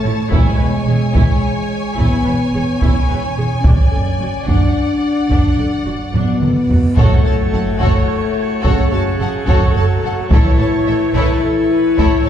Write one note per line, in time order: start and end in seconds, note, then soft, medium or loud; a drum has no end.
0.00 0.12 A2 soft
0.00 0.28 A3 medium
0.00 0.28 C#5 medium
0.00 0.28 A5 medium
0.04 0.12 A1 soft
0.04 0.13 E4 medium
0.31 0.40 E1 medium
0.31 0.39 E2 medium
0.31 1.98 G#3 medium
0.31 0.57 E4 medium
0.31 3.60 C#5 medium
0.31 4.45 G#5 medium
0.31 taiko medium
0.58 0.68 E1 soft
0.58 0.67 E2 soft
0.58 0.66 B4 soft
0.87 0.95 E1 soft
0.87 0.95 E2 soft
0.87 0.95 G#4 soft
1.14 1.23 E1 medium
1.14 1.22 E2 medium
1.14 1.40 E4 medium
1.14 taiko medium
1.96 2.05 E1 medium
1.96 2.06 E2 medium
1.96 2.79 B3 medium
1.96 2.23 E4 medium
1.96 taiko medium
2.24 2.34 E1 soft
2.24 2.35 E2 soft
2.24 2.32 B4 soft
2.53 2.61 E1 soft
2.53 2.62 E2 soft
2.53 2.62 G#4 soft
2.80 2.90 E1 medium
2.80 2.90 E2 medium
2.80 3.61 C#4 medium
2.80 3.07 E4 medium
2.80 taiko medium
3.09 3.17 E1 soft
3.09 3.18 E2 soft
3.09 3.17 B4 soft
3.37 3.45 E1 soft
3.37 3.45 E2 soft
3.37 3.45 G#4 soft
3.62 3.73 F#1 soft
3.62 3.73 F#2 soft
3.62 4.44 C#4 medium
3.62 3.89 D4 soft
3.62 6.76 D5 soft
3.62 taiko medium
3.62 reverse cymbal soft
3.91 4.00 F#1 soft
3.91 4.02 F#2 soft
3.91 3.99 A4 soft
4.19 4.28 F#1 soft
4.19 4.28 F#2 soft
4.19 4.27 F#4 soft
4.46 4.55 F#1 soft
4.46 4.55 F#2 medium
4.46 4.73 D4 soft
4.46 5.98 D4 medium
4.46 6.77 F#5 soft
4.46 taiko medium
5.30 5.38 F#1 soft
5.30 5.39 F#2 soft
5.30 5.57 D4 medium
5.30 taiko medium
5.57 5.66 F#1 soft
5.57 5.65 F#2 soft
5.57 5.68 A4 soft
5.85 5.93 F#1 soft
5.85 5.93 F#2 soft
5.85 5.94 F#4 soft
6.13 6.21 F#1 soft
6.13 6.21 F#2 medium
6.13 6.93 B2 medium
6.13 6.94 B3 medium
6.13 6.40 D4 soft
6.13 taiko low-mid medium
6.41 6.50 F#1 soft
6.41 6.49 F#2 soft
6.41 6.51 A4 soft
6.41 taiko mid medium
6.69 6.78 F#1 soft
6.69 6.78 F#2 soft
6.69 6.78 F#4 soft
6.69 taiko low medium
6.97 7.06 F#1 medium
6.97 7.05 F#2 medium
6.97 8.63 A2 medium
6.97 10.26 A3 medium
6.97 8.64 A3 medium
6.97 7.23 F#4 medium
6.97 10.27 F#4 medium
6.97 10.26 A4 medium
6.97 7.23 A4 medium
6.97 7.77 A4 medium
6.97 7.23 C#5 medium
6.97 10.27 C#5 medium
6.97 taiko medium
6.97 sub drop medium
7.25 7.34 F#1 soft
7.25 7.33 F#2 soft
7.25 7.33 A4 soft
7.25 7.33 C#5 soft
7.25 7.33 A5 soft
7.52 7.62 F#1 soft
7.52 7.60 F#2 soft
7.52 7.61 A4 soft
7.52 7.61 F#5 soft
7.79 7.89 F#1 medium
7.79 7.89 F#2 medium
7.79 8.05 F#4 medium
7.79 8.05 A4 medium
7.79 8.64 C#5 medium
7.79 8.07 C#5 medium
7.79 taiko medium
8.61 8.72 F#2 medium
8.61 9.45 C#4 medium
8.61 8.88 F#4 medium
8.61 8.89 A4 medium
8.61 8.91 A4 medium
8.61 8.90 C#5 medium
8.61 taiko medium
8.66 8.74 F#1 medium
8.66 9.48 C#3 medium
8.91 9.01 F#1 soft
8.91 9.01 F#2 soft
8.91 9.19 F#4 soft
8.91 8.99 A4 soft
8.91 9.00 C#5 soft
8.91 9.02 A5 soft
9.18 9.28 F#1 soft
9.18 9.28 F#2 soft
9.18 9.46 G#4 medium
9.18 9.29 A4 soft
9.18 9.30 F#5 soft
9.45 9.56 F#1 medium
9.45 9.55 F#2 medium
9.45 10.29 F#3 medium
9.45 10.29 F#4 medium
9.45 9.74 F#4 medium
9.45 10.29 A4 medium
9.45 9.73 A4 medium
9.45 9.73 C#5 medium
9.45 taiko medium
9.74 9.82 F#1 soft
9.74 9.83 F#2 soft
9.74 9.85 A4 soft
9.74 9.84 C#5 soft
9.74 9.85 A5 soft
10.02 10.11 F#1 soft
10.02 10.10 F#2 soft
10.02 10.12 A4 soft
10.02 10.14 F#5 soft
10.30 10.38 A1 medium
10.30 10.38 A2 medium
10.30 11.14 E3 medium
10.30 12.29 A3 medium
10.30 10.57 E4 medium
10.30 11.13 E4 medium
10.30 12.29 E4 medium
10.30 12.29 A4 medium
10.30 10.57 A4 medium
10.30 11.12 C#5 medium
10.30 12.29 C#5 medium
10.30 10.57 C#5 medium
10.30 taiko medium
10.58 10.66 A1 soft
10.58 10.67 A2 soft
10.58 10.68 A4 soft
10.58 10.68 C#5 soft
10.58 10.68 A5 soft
10.87 10.95 A1 soft
10.87 10.95 A2 soft
10.87 10.96 A4 soft
10.87 10.95 E5 soft
11.14 11.22 A1 medium
11.14 11.23 A2 medium
11.14 12.29 E3 medium
11.14 12.29 E4 medium
11.14 11.41 E4 medium
11.14 11.41 A4 medium
11.14 11.42 B4 medium
11.14 11.41 C#5 medium
11.14 taiko medium
11.43 11.70 A4 soft
11.71 11.98 B4 soft
11.98 12.06 A1 medium
11.98 12.07 A2 medium
11.98 12.24 E4 medium
11.98 12.24 A4 medium
11.98 12.24 C#5 medium
11.98 12.29 C#5 medium
11.98 taiko medium
12.25 12.29 A1 soft
12.25 12.29 A2 soft
12.25 12.29 A4 soft
12.25 12.29 C#5 soft